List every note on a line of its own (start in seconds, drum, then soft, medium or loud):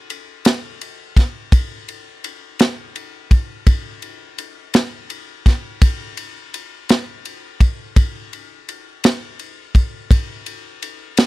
0.10 ride medium
0.45 snare loud
0.45 ride medium
0.81 ride medium
1.17 kick medium
1.17 snare soft
1.17 ride medium
1.52 kick loud
1.52 ride medium
1.88 ride medium
2.24 ride medium
2.59 snare loud
2.59 ride medium
2.96 ride medium
3.31 kick medium
3.31 ride medium
3.67 kick medium
3.67 ride medium
4.02 ride medium
4.38 ride medium
4.74 snare loud
4.74 ride medium
5.10 ride medium
5.46 kick medium
5.46 snare soft
5.46 ride medium
5.82 kick loud
5.82 ride medium
6.17 ride medium
6.54 ride medium
6.89 snare medium
6.89 ride medium
7.25 ride medium
7.60 kick medium
7.60 ride medium
7.96 kick loud
7.96 ride medium
8.33 ride medium
8.69 ride medium
9.04 snare loud
9.04 ride medium
9.39 ride medium
9.75 kick medium
9.75 ride medium
10.11 kick loud
10.11 ride medium
10.46 ride medium
10.82 ride medium
11.17 snare loud
11.17 ride medium